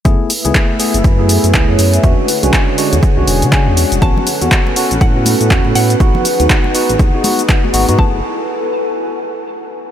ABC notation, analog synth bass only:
X:1
M:4/4
L:1/16
Q:"Swing 16ths" 1/4=121
K:F#m
V:1 name="Analog synth bass" clef=bass
F,,, z2 C,, z3 F,,, F,,3 F,, C,, F,, F,,2 | E,, z2 B,,, z3 E,, z B,,, E,,, C,2 E,,2 E,,, | A,,, z2 E,, z3 A,,, A,,3 A,, E,, A,, A,,2 | G,,, z2 ^D,, z3 G,,, D,, z4 z G,,, G,, |
F,,,2 z12 z2 |]